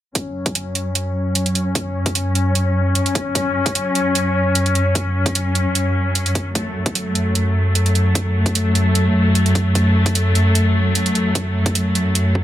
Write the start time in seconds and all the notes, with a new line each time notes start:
0.15 F#2 F#3 C#4, kick, closed hi-hat
0.46 kick, closed hi-hat
0.55 closed hi-hat
0.75 closed hi-hat
0.95 closed hi-hat
1.35 closed hi-hat
1.46 closed hi-hat
1.55 closed hi-hat
1.75 kick, closed hi-hat
2.06 kick, closed hi-hat
2.15 closed hi-hat
2.35 closed hi-hat
2.55 closed hi-hat
2.95 closed hi-hat
3.06 closed hi-hat
3.15 kick, closed hi-hat
3.35 kick, closed hi-hat
3.66 kick, closed hi-hat
3.75 closed hi-hat
3.95 closed hi-hat
4.15 closed hi-hat
4.55 closed hi-hat
4.66 closed hi-hat
4.75 closed hi-hat
4.95 kick, closed hi-hat
5.26 kick, closed hi-hat
5.35 closed hi-hat
5.55 closed hi-hat
5.75 closed hi-hat
6.15 closed hi-hat
6.26 closed hi-hat
6.35 kick, closed hi-hat
6.55 A3, kick, closed hi-hat
6.86 kick, closed hi-hat
6.95 closed hi-hat
7.15 closed hi-hat
7.35 closed hi-hat
7.75 closed hi-hat
7.86 closed hi-hat
7.95 closed hi-hat
8.15 kick, closed hi-hat
8.46 kick, closed hi-hat
8.55 closed hi-hat
8.75 closed hi-hat
8.95 closed hi-hat
9.35 closed hi-hat
9.46 closed hi-hat
9.55 kick, closed hi-hat
9.75 kick, closed hi-hat
10.06 kick, closed hi-hat
10.15 closed hi-hat
10.35 closed hi-hat
10.55 closed hi-hat
10.95 closed hi-hat
11.06 closed hi-hat
11.15 closed hi-hat
11.35 kick, closed hi-hat
11.66 kick, closed hi-hat
11.75 closed hi-hat
11.95 closed hi-hat
12.15 closed hi-hat
12.35 kick